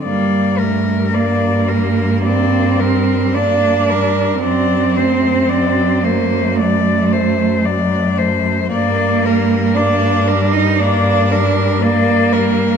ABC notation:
X:1
M:4/4
L:1/16
Q:1/4=56
K:Gm
V:1 name="Cello"
d2 B2 d2 B2 d2 B2 d2 B2 | d2 c2 d2 c2 d2 c2 d2 c2 | d2 B2 d2 B2 d2 B2 d2 B2 |]
V:2 name="Cello"
G,2 A,2 B,4 C4 D4 | C6 B,2 A,6 z2 | B,4 D3 E D4 B,4 |]
V:3 name="Cello" clef=bass
B,2 G,2 B,2 G,2 B,2 G,2 B,2 G,2 | ^F,2 A,2 F,2 A,2 F,2 A,2 F,2 A,2 | B,2 G,2 B,2 G,2 B,2 G,2 B,2 G,2 |]
V:4 name="Cello" clef=bass
G,,16 | ^F,,16 | G,,16 |]